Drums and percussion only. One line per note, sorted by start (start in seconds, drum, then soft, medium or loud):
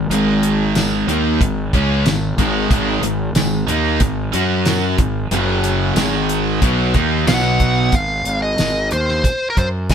0.11 closed hi-hat medium
0.43 closed hi-hat medium
0.75 snare loud
0.75 closed hi-hat medium
0.75 tambourine loud
1.09 closed hi-hat medium
1.41 kick medium
1.41 closed hi-hat medium
1.73 kick medium
1.73 closed hi-hat medium
2.06 snare loud
2.06 closed hi-hat medium
2.06 tambourine loud
2.38 kick medium
2.38 closed hi-hat medium
2.71 kick loud
2.71 closed hi-hat medium
3.03 closed hi-hat medium
3.35 snare loud
3.35 closed hi-hat medium
3.35 tambourine loud
3.68 closed hi-hat medium
4.00 kick medium
4.00 closed hi-hat medium
4.33 closed hi-hat medium
4.65 snare loud
4.65 closed hi-hat medium
4.65 tambourine medium
4.98 kick medium
4.98 closed hi-hat medium
5.31 closed hi-hat medium
5.64 closed hi-hat medium
5.96 snare loud
5.96 closed hi-hat medium
5.96 tambourine loud
6.29 closed hi-hat medium
6.62 kick medium
6.62 closed hi-hat medium
6.94 kick medium
6.94 closed hi-hat medium
7.27 snare loud
7.27 closed hi-hat medium
7.27 tambourine loud
7.60 kick medium
7.60 closed hi-hat medium
7.92 kick medium
7.92 closed hi-hat medium
8.25 closed hi-hat medium
8.58 snare loud
8.58 closed hi-hat medium
8.58 tambourine loud
8.91 closed hi-hat medium
9.09 snare soft
9.24 kick medium
9.24 closed hi-hat medium
9.57 kick medium
9.57 closed hi-hat medium
9.90 kick medium
9.90 snare medium
9.90 closed hi-hat medium
9.90 tambourine medium